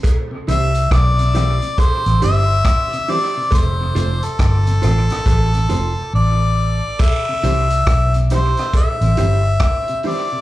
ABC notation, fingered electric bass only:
X:1
M:4/4
L:1/16
Q:"Swing 16ths" 1/4=69
K:C
V:1 name="Fingered electric bass" clef=bass
z2 C,,2 B,,,3 z2 A,,, G,,,2 z4 | F,,,2 F,,, z G,,,2 A,,, z A,,,2 F,,, z A,,,3 z | z2 C,,2 B,,,3 z2 A,,, G,,,2 z4 |]